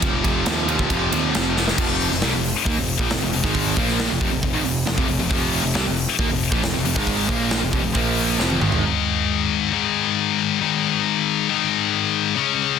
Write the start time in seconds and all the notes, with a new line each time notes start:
0.01 F1 F2 C3 F3, kick, ride
0.24 F1 F2 C3 F3, kick, ride
0.46 D#2 F2 C3 F3, snare, ride
0.68 F2 C3 F3, ride
0.79 kick
0.90 F1 F2 C3 F3, kick, ride
1.12 D#2 F2 C3 F3, ride
1.34 F1 F2 C3 F3, snare, ride
1.56 F2 C3 F3, snare
1.68 snare
1.78 F1 F2 C3 F3, kick, crash
2.00 open hi-hat
2.12 F1 F2 C3, snare
2.21 C2 C3 G3, snare, open hi-hat
2.33 F1 F2 C3
2.44 open hi-hat
2.66 D#2 D#3 A#3, kick, open hi-hat
2.78 F1 F2 C3
2.88 open hi-hat
2.99 A#1 A#2 F3, kick
3.10 F1 F2 C3, snare, open hi-hat
3.22 F1 F2 C3
3.33 F1 F2 C3, open hi-hat
3.44 G#1 G#2 D#3 G#3, kick, snare
3.55 kick, open hi-hat
3.77 A#1 A#2 F3 A#3, kick, open hi-hat
3.89 snare
3.99 snare, open hi-hat
4.10 F1 F2 C3
4.21 F1 F2 C3, kick
4.32 F1 F2 C3
4.43 F1 F2 C3, kick, open hi-hat
4.53 G#1 G#2 D#3
4.64 F1 F2 C3, open hi-hat
4.87 F1 F2 C3, snare
4.98 F1 F2 C3, kick
5.08 F1 F2 C3, open hi-hat
5.19 F1 F2 C3
5.29 F1 F2 C3 F3, kick, open hi-hat
5.53 open hi-hat
5.63 F1 F2 C3
5.74 C2 C3 G3, snare
5.86 F1 F2 C3
5.96 open hi-hat
6.19 D#2 D#3 A#3, kick
6.30 F1 F2 C3
6.41 open hi-hat
6.52 A#1 A#2 F3, kick
6.63 F1 F2 C3, snare, open hi-hat
6.74 F1 F2 C3
6.85 F1 F2 C3, open hi-hat
6.96 G#1 G#2 D#3 G#3, kick, snare
7.07 kick, open hi-hat
7.29 A#1 A#2 F3 A#3, kick
7.51 snare, open hi-hat
7.62 F1 F2 C3
7.73 F1 F2 C3, kick, open hi-hat
7.83 F1 F2 C3
7.95 A#1 A#2 F3 A#3, kick, open hi-hat
8.17 open hi-hat
8.39 F1 F2 C3 F3, snare
8.51 high tom
8.60 G#1 G#2 D#3 G#3, mid tom
8.72 floor tom
8.82 G#2 D#3 G#3
9.72 G#2 D#3 G#3
10.61 G#2 D#3 G#3
11.48 G#2 D#3 G#3
12.36 C#3 G#3 C#4